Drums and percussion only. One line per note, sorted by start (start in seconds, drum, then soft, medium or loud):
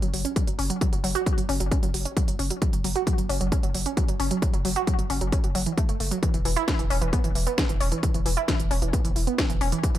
0.02 closed hi-hat medium
0.14 open hi-hat loud
0.25 closed hi-hat medium
0.36 kick loud
0.36 closed hi-hat medium
0.47 closed hi-hat medium
0.59 open hi-hat medium
0.70 closed hi-hat medium
0.81 kick loud
0.81 closed hi-hat medium
0.93 closed hi-hat medium
1.04 open hi-hat loud
1.15 closed hi-hat medium
1.26 kick loud
1.26 closed hi-hat medium
1.38 closed hi-hat medium
1.49 open hi-hat medium
1.60 closed hi-hat medium
1.72 kick loud
1.72 closed hi-hat medium
1.83 closed hi-hat medium
1.94 open hi-hat loud
2.05 closed hi-hat medium
2.17 kick loud
2.17 closed hi-hat medium
2.28 closed hi-hat medium
2.39 open hi-hat medium
2.51 closed hi-hat medium
2.62 kick loud
2.62 closed hi-hat medium
2.73 closed hi-hat medium
2.84 open hi-hat loud
2.96 closed hi-hat medium
3.07 kick loud
3.07 closed hi-hat medium
3.18 closed hi-hat medium
3.30 open hi-hat loud
3.41 closed hi-hat medium
3.52 kick loud
3.52 closed hi-hat medium
3.63 closed hi-hat medium
3.75 open hi-hat loud
3.86 closed hi-hat medium
3.97 kick loud
3.97 closed hi-hat medium
4.08 closed hi-hat medium
4.20 open hi-hat medium
4.31 closed hi-hat medium
4.42 kick loud
4.42 closed hi-hat medium
4.54 closed hi-hat medium
4.65 open hi-hat loud
4.76 closed hi-hat soft
4.87 kick loud
4.87 closed hi-hat medium
4.99 closed hi-hat medium
5.10 open hi-hat loud
5.21 closed hi-hat soft
5.32 kick loud
5.32 closed hi-hat medium
5.44 closed hi-hat soft
5.55 open hi-hat loud
5.66 closed hi-hat medium
5.78 kick loud
5.78 closed hi-hat medium
5.89 closed hi-hat medium
6.00 open hi-hat medium
6.11 closed hi-hat medium
6.23 kick loud
6.23 closed hi-hat medium
6.34 closed hi-hat medium
6.45 open hi-hat loud
6.57 closed hi-hat soft
6.68 kick loud
6.68 snare loud
6.68 closed hi-hat medium
6.79 closed hi-hat medium
6.90 open hi-hat medium
7.02 closed hi-hat medium
7.13 kick loud
7.13 closed hi-hat medium
7.24 closed hi-hat soft
7.35 open hi-hat loud
7.47 closed hi-hat medium
7.58 kick loud
7.58 snare loud
7.58 closed hi-hat medium
7.69 closed hi-hat medium
7.81 open hi-hat medium
7.92 closed hi-hat medium
8.03 kick loud
8.03 closed hi-hat medium
8.14 closed hi-hat medium
8.26 open hi-hat loud
8.37 closed hi-hat soft
8.48 kick loud
8.48 snare loud
8.48 closed hi-hat medium
8.60 closed hi-hat medium
8.71 open hi-hat medium
8.82 closed hi-hat medium
8.93 kick loud
8.93 closed hi-hat medium
9.05 closed hi-hat medium
9.16 open hi-hat loud
9.27 closed hi-hat medium
9.38 kick loud
9.38 snare loud
9.38 closed hi-hat medium
9.50 closed hi-hat soft
9.61 open hi-hat medium
9.72 closed hi-hat medium
9.83 kick loud
9.83 closed hi-hat medium
9.95 closed hi-hat medium